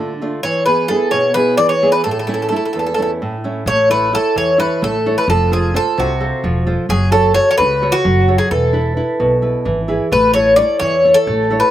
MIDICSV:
0, 0, Header, 1, 4, 480
1, 0, Start_track
1, 0, Key_signature, 3, "major"
1, 0, Tempo, 461184
1, 459, Time_signature, 7, 3, 24, 8
1, 12185, End_track
2, 0, Start_track
2, 0, Title_t, "Bouzouki"
2, 0, Program_c, 0, 25
2, 0, Note_on_c, 0, 69, 65
2, 182, Note_off_c, 0, 69, 0
2, 450, Note_on_c, 0, 73, 78
2, 678, Note_off_c, 0, 73, 0
2, 683, Note_on_c, 0, 71, 68
2, 913, Note_off_c, 0, 71, 0
2, 919, Note_on_c, 0, 69, 79
2, 1152, Note_off_c, 0, 69, 0
2, 1156, Note_on_c, 0, 73, 74
2, 1393, Note_off_c, 0, 73, 0
2, 1397, Note_on_c, 0, 71, 82
2, 1635, Note_off_c, 0, 71, 0
2, 1639, Note_on_c, 0, 74, 86
2, 1756, Note_off_c, 0, 74, 0
2, 1760, Note_on_c, 0, 73, 76
2, 1992, Note_off_c, 0, 73, 0
2, 1997, Note_on_c, 0, 71, 80
2, 2118, Note_off_c, 0, 71, 0
2, 2122, Note_on_c, 0, 69, 69
2, 2186, Note_off_c, 0, 69, 0
2, 2199, Note_on_c, 0, 69, 52
2, 2270, Note_off_c, 0, 69, 0
2, 2282, Note_on_c, 0, 69, 53
2, 2350, Note_off_c, 0, 69, 0
2, 2363, Note_on_c, 0, 69, 45
2, 2423, Note_off_c, 0, 69, 0
2, 2435, Note_on_c, 0, 69, 48
2, 2509, Note_off_c, 0, 69, 0
2, 2522, Note_on_c, 0, 69, 43
2, 2576, Note_off_c, 0, 69, 0
2, 2588, Note_on_c, 0, 69, 53
2, 2655, Note_off_c, 0, 69, 0
2, 2668, Note_on_c, 0, 69, 45
2, 2751, Note_off_c, 0, 69, 0
2, 2763, Note_on_c, 0, 69, 43
2, 2828, Note_off_c, 0, 69, 0
2, 2841, Note_on_c, 0, 69, 43
2, 2894, Note_off_c, 0, 69, 0
2, 2906, Note_on_c, 0, 69, 46
2, 2969, Note_off_c, 0, 69, 0
2, 2981, Note_on_c, 0, 69, 47
2, 3051, Note_off_c, 0, 69, 0
2, 3064, Note_on_c, 0, 69, 58
2, 3134, Note_off_c, 0, 69, 0
2, 3146, Note_on_c, 0, 69, 44
2, 3226, Note_off_c, 0, 69, 0
2, 3825, Note_on_c, 0, 73, 90
2, 4045, Note_off_c, 0, 73, 0
2, 4066, Note_on_c, 0, 71, 82
2, 4285, Note_off_c, 0, 71, 0
2, 4317, Note_on_c, 0, 69, 90
2, 4551, Note_off_c, 0, 69, 0
2, 4555, Note_on_c, 0, 73, 80
2, 4770, Note_off_c, 0, 73, 0
2, 4784, Note_on_c, 0, 71, 75
2, 5004, Note_off_c, 0, 71, 0
2, 5036, Note_on_c, 0, 69, 78
2, 5384, Note_off_c, 0, 69, 0
2, 5389, Note_on_c, 0, 71, 74
2, 5506, Note_off_c, 0, 71, 0
2, 5513, Note_on_c, 0, 69, 78
2, 5729, Note_off_c, 0, 69, 0
2, 5756, Note_on_c, 0, 68, 68
2, 5993, Note_off_c, 0, 68, 0
2, 5999, Note_on_c, 0, 69, 91
2, 6235, Note_off_c, 0, 69, 0
2, 6239, Note_on_c, 0, 66, 62
2, 6906, Note_off_c, 0, 66, 0
2, 7180, Note_on_c, 0, 68, 89
2, 7401, Note_off_c, 0, 68, 0
2, 7411, Note_on_c, 0, 69, 77
2, 7636, Note_off_c, 0, 69, 0
2, 7644, Note_on_c, 0, 73, 94
2, 7800, Note_off_c, 0, 73, 0
2, 7813, Note_on_c, 0, 73, 72
2, 7881, Note_off_c, 0, 73, 0
2, 7885, Note_on_c, 0, 71, 86
2, 8243, Note_on_c, 0, 66, 95
2, 8261, Note_off_c, 0, 71, 0
2, 8695, Note_off_c, 0, 66, 0
2, 8725, Note_on_c, 0, 68, 70
2, 8854, Note_off_c, 0, 68, 0
2, 8858, Note_on_c, 0, 69, 73
2, 10255, Note_off_c, 0, 69, 0
2, 10538, Note_on_c, 0, 71, 77
2, 10752, Note_off_c, 0, 71, 0
2, 10757, Note_on_c, 0, 73, 85
2, 10989, Note_off_c, 0, 73, 0
2, 10993, Note_on_c, 0, 74, 94
2, 11227, Note_off_c, 0, 74, 0
2, 11236, Note_on_c, 0, 73, 86
2, 11598, Note_on_c, 0, 69, 94
2, 11617, Note_off_c, 0, 73, 0
2, 12071, Note_on_c, 0, 71, 75
2, 12102, Note_off_c, 0, 69, 0
2, 12185, Note_off_c, 0, 71, 0
2, 12185, End_track
3, 0, Start_track
3, 0, Title_t, "Nylon-string guitar"
3, 0, Program_c, 1, 24
3, 0, Note_on_c, 1, 50, 52
3, 0, Note_on_c, 1, 57, 43
3, 0, Note_on_c, 1, 62, 39
3, 0, Note_on_c, 1, 65, 49
3, 126, Note_off_c, 1, 57, 0
3, 131, Note_off_c, 1, 62, 0
3, 131, Note_off_c, 1, 65, 0
3, 225, Note_on_c, 1, 57, 49
3, 228, Note_on_c, 1, 62, 42
3, 232, Note_on_c, 1, 65, 51
3, 415, Note_off_c, 1, 57, 0
3, 415, Note_off_c, 1, 62, 0
3, 419, Note_off_c, 1, 65, 0
3, 452, Note_off_c, 1, 50, 0
3, 460, Note_on_c, 1, 52, 55
3, 695, Note_on_c, 1, 59, 41
3, 702, Note_on_c, 1, 64, 44
3, 704, Note_on_c, 1, 68, 48
3, 923, Note_off_c, 1, 59, 0
3, 925, Note_off_c, 1, 52, 0
3, 929, Note_off_c, 1, 64, 0
3, 934, Note_off_c, 1, 68, 0
3, 935, Note_on_c, 1, 59, 41
3, 942, Note_on_c, 1, 64, 38
3, 946, Note_on_c, 1, 68, 51
3, 1174, Note_on_c, 1, 47, 56
3, 1321, Note_off_c, 1, 59, 0
3, 1325, Note_off_c, 1, 64, 0
3, 1327, Note_off_c, 1, 68, 0
3, 1414, Note_on_c, 1, 59, 40
3, 1418, Note_on_c, 1, 64, 40
3, 1420, Note_on_c, 1, 68, 46
3, 1642, Note_off_c, 1, 47, 0
3, 1653, Note_on_c, 1, 52, 58
3, 1800, Note_off_c, 1, 59, 0
3, 1801, Note_off_c, 1, 64, 0
3, 1804, Note_off_c, 1, 68, 0
3, 1898, Note_on_c, 1, 59, 44
3, 1902, Note_on_c, 1, 64, 47
3, 1903, Note_on_c, 1, 68, 52
3, 2090, Note_off_c, 1, 64, 0
3, 2091, Note_off_c, 1, 59, 0
3, 2093, Note_off_c, 1, 68, 0
3, 2121, Note_off_c, 1, 52, 0
3, 2139, Note_on_c, 1, 45, 58
3, 2369, Note_on_c, 1, 57, 46
3, 2380, Note_on_c, 1, 61, 40
3, 2384, Note_on_c, 1, 64, 50
3, 2604, Note_off_c, 1, 45, 0
3, 2609, Note_off_c, 1, 57, 0
3, 2610, Note_off_c, 1, 61, 0
3, 2614, Note_off_c, 1, 64, 0
3, 2621, Note_on_c, 1, 57, 42
3, 2624, Note_on_c, 1, 61, 35
3, 2626, Note_on_c, 1, 64, 48
3, 2866, Note_on_c, 1, 40, 55
3, 3004, Note_off_c, 1, 57, 0
3, 3005, Note_off_c, 1, 61, 0
3, 3007, Note_off_c, 1, 64, 0
3, 3100, Note_on_c, 1, 57, 42
3, 3105, Note_on_c, 1, 61, 40
3, 3114, Note_on_c, 1, 64, 47
3, 3328, Note_off_c, 1, 40, 0
3, 3350, Note_on_c, 1, 45, 55
3, 3483, Note_off_c, 1, 57, 0
3, 3486, Note_off_c, 1, 61, 0
3, 3492, Note_off_c, 1, 64, 0
3, 3582, Note_on_c, 1, 57, 48
3, 3585, Note_on_c, 1, 61, 42
3, 3591, Note_on_c, 1, 64, 51
3, 3773, Note_off_c, 1, 57, 0
3, 3774, Note_off_c, 1, 61, 0
3, 3776, Note_off_c, 1, 64, 0
3, 3810, Note_off_c, 1, 45, 0
3, 3818, Note_on_c, 1, 57, 60
3, 4056, Note_on_c, 1, 64, 47
3, 4062, Note_on_c, 1, 69, 45
3, 4068, Note_on_c, 1, 73, 56
3, 4283, Note_off_c, 1, 64, 0
3, 4284, Note_off_c, 1, 57, 0
3, 4288, Note_off_c, 1, 69, 0
3, 4292, Note_off_c, 1, 73, 0
3, 4295, Note_on_c, 1, 64, 45
3, 4300, Note_on_c, 1, 69, 38
3, 4305, Note_on_c, 1, 73, 42
3, 4540, Note_on_c, 1, 52, 60
3, 4680, Note_off_c, 1, 64, 0
3, 4683, Note_off_c, 1, 69, 0
3, 4686, Note_off_c, 1, 73, 0
3, 4767, Note_on_c, 1, 64, 46
3, 4771, Note_on_c, 1, 69, 41
3, 4777, Note_on_c, 1, 73, 46
3, 5004, Note_off_c, 1, 52, 0
3, 5016, Note_on_c, 1, 57, 57
3, 5155, Note_off_c, 1, 64, 0
3, 5156, Note_off_c, 1, 69, 0
3, 5161, Note_off_c, 1, 73, 0
3, 5267, Note_on_c, 1, 64, 54
3, 5270, Note_on_c, 1, 69, 45
3, 5274, Note_on_c, 1, 73, 57
3, 5456, Note_off_c, 1, 64, 0
3, 5456, Note_off_c, 1, 69, 0
3, 5457, Note_off_c, 1, 73, 0
3, 5482, Note_off_c, 1, 57, 0
3, 5509, Note_on_c, 1, 53, 61
3, 5739, Note_on_c, 1, 65, 49
3, 5742, Note_on_c, 1, 69, 43
3, 5747, Note_on_c, 1, 72, 55
3, 5962, Note_off_c, 1, 65, 0
3, 5965, Note_off_c, 1, 69, 0
3, 5969, Note_off_c, 1, 53, 0
3, 5970, Note_off_c, 1, 72, 0
3, 5974, Note_on_c, 1, 65, 47
3, 5978, Note_on_c, 1, 69, 43
3, 5982, Note_on_c, 1, 72, 46
3, 6221, Note_on_c, 1, 48, 71
3, 6359, Note_off_c, 1, 65, 0
3, 6361, Note_off_c, 1, 69, 0
3, 6364, Note_off_c, 1, 72, 0
3, 6456, Note_on_c, 1, 69, 37
3, 6458, Note_on_c, 1, 77, 43
3, 6463, Note_on_c, 1, 72, 51
3, 6684, Note_off_c, 1, 48, 0
3, 6703, Note_on_c, 1, 53, 58
3, 6840, Note_off_c, 1, 77, 0
3, 6841, Note_off_c, 1, 69, 0
3, 6845, Note_off_c, 1, 72, 0
3, 6938, Note_on_c, 1, 65, 51
3, 6938, Note_on_c, 1, 69, 43
3, 6944, Note_on_c, 1, 72, 52
3, 7128, Note_off_c, 1, 69, 0
3, 7130, Note_off_c, 1, 65, 0
3, 7133, Note_off_c, 1, 72, 0
3, 7165, Note_off_c, 1, 53, 0
3, 7174, Note_on_c, 1, 54, 58
3, 7402, Note_on_c, 1, 66, 47
3, 7411, Note_on_c, 1, 69, 44
3, 7415, Note_on_c, 1, 73, 58
3, 7639, Note_off_c, 1, 66, 0
3, 7640, Note_off_c, 1, 54, 0
3, 7646, Note_off_c, 1, 69, 0
3, 7648, Note_off_c, 1, 73, 0
3, 7651, Note_on_c, 1, 66, 42
3, 7657, Note_on_c, 1, 69, 41
3, 7663, Note_on_c, 1, 73, 47
3, 7906, Note_on_c, 1, 49, 65
3, 8037, Note_off_c, 1, 66, 0
3, 8041, Note_off_c, 1, 69, 0
3, 8043, Note_off_c, 1, 73, 0
3, 8136, Note_on_c, 1, 66, 45
3, 8142, Note_on_c, 1, 69, 42
3, 8148, Note_on_c, 1, 73, 48
3, 8367, Note_off_c, 1, 49, 0
3, 8373, Note_on_c, 1, 54, 65
3, 8520, Note_off_c, 1, 66, 0
3, 8524, Note_off_c, 1, 69, 0
3, 8526, Note_off_c, 1, 73, 0
3, 8616, Note_on_c, 1, 66, 50
3, 8620, Note_on_c, 1, 69, 44
3, 8627, Note_on_c, 1, 73, 50
3, 8808, Note_off_c, 1, 66, 0
3, 8811, Note_off_c, 1, 69, 0
3, 8813, Note_off_c, 1, 73, 0
3, 8840, Note_off_c, 1, 54, 0
3, 8856, Note_on_c, 1, 52, 55
3, 9085, Note_on_c, 1, 64, 47
3, 9096, Note_on_c, 1, 71, 50
3, 9320, Note_off_c, 1, 64, 0
3, 9321, Note_off_c, 1, 52, 0
3, 9324, Note_off_c, 1, 71, 0
3, 9333, Note_on_c, 1, 64, 40
3, 9336, Note_on_c, 1, 71, 48
3, 9574, Note_on_c, 1, 47, 59
3, 9718, Note_off_c, 1, 64, 0
3, 9720, Note_off_c, 1, 71, 0
3, 9805, Note_on_c, 1, 64, 43
3, 9812, Note_on_c, 1, 71, 50
3, 10040, Note_off_c, 1, 47, 0
3, 10047, Note_on_c, 1, 52, 56
3, 10194, Note_off_c, 1, 64, 0
3, 10196, Note_off_c, 1, 71, 0
3, 10284, Note_on_c, 1, 64, 48
3, 10290, Note_on_c, 1, 68, 42
3, 10293, Note_on_c, 1, 71, 52
3, 10481, Note_off_c, 1, 64, 0
3, 10485, Note_off_c, 1, 68, 0
3, 10485, Note_off_c, 1, 71, 0
3, 10517, Note_off_c, 1, 52, 0
3, 10528, Note_on_c, 1, 57, 61
3, 10769, Note_on_c, 1, 64, 46
3, 10778, Note_on_c, 1, 69, 44
3, 10779, Note_on_c, 1, 73, 57
3, 10995, Note_off_c, 1, 64, 0
3, 10998, Note_off_c, 1, 57, 0
3, 11000, Note_off_c, 1, 69, 0
3, 11006, Note_off_c, 1, 73, 0
3, 11007, Note_on_c, 1, 64, 42
3, 11012, Note_on_c, 1, 69, 36
3, 11018, Note_on_c, 1, 73, 52
3, 11265, Note_on_c, 1, 52, 68
3, 11395, Note_off_c, 1, 64, 0
3, 11398, Note_off_c, 1, 69, 0
3, 11402, Note_off_c, 1, 73, 0
3, 11497, Note_on_c, 1, 64, 44
3, 11502, Note_on_c, 1, 69, 42
3, 11506, Note_on_c, 1, 73, 52
3, 11726, Note_off_c, 1, 52, 0
3, 11734, Note_on_c, 1, 57, 56
3, 11882, Note_off_c, 1, 64, 0
3, 11882, Note_off_c, 1, 69, 0
3, 11886, Note_off_c, 1, 73, 0
3, 11974, Note_on_c, 1, 64, 53
3, 11983, Note_on_c, 1, 69, 46
3, 11989, Note_on_c, 1, 73, 52
3, 12167, Note_off_c, 1, 64, 0
3, 12173, Note_off_c, 1, 69, 0
3, 12175, Note_off_c, 1, 73, 0
3, 12185, Note_off_c, 1, 57, 0
3, 12185, End_track
4, 0, Start_track
4, 0, Title_t, "Upright bass"
4, 0, Program_c, 2, 32
4, 3809, Note_on_c, 2, 33, 102
4, 4316, Note_off_c, 2, 33, 0
4, 4538, Note_on_c, 2, 40, 79
4, 4874, Note_off_c, 2, 40, 0
4, 5023, Note_on_c, 2, 33, 91
4, 5357, Note_off_c, 2, 33, 0
4, 5493, Note_on_c, 2, 29, 105
4, 5998, Note_off_c, 2, 29, 0
4, 6225, Note_on_c, 2, 36, 84
4, 6558, Note_off_c, 2, 36, 0
4, 6699, Note_on_c, 2, 28, 94
4, 7034, Note_off_c, 2, 28, 0
4, 7171, Note_on_c, 2, 30, 100
4, 7677, Note_off_c, 2, 30, 0
4, 7897, Note_on_c, 2, 37, 90
4, 8232, Note_off_c, 2, 37, 0
4, 8379, Note_on_c, 2, 30, 104
4, 8714, Note_off_c, 2, 30, 0
4, 8860, Note_on_c, 2, 28, 100
4, 9362, Note_off_c, 2, 28, 0
4, 9572, Note_on_c, 2, 35, 85
4, 9909, Note_off_c, 2, 35, 0
4, 10051, Note_on_c, 2, 32, 90
4, 10389, Note_off_c, 2, 32, 0
4, 10531, Note_on_c, 2, 33, 102
4, 11037, Note_off_c, 2, 33, 0
4, 11250, Note_on_c, 2, 40, 82
4, 11588, Note_off_c, 2, 40, 0
4, 11730, Note_on_c, 2, 33, 104
4, 12068, Note_off_c, 2, 33, 0
4, 12185, End_track
0, 0, End_of_file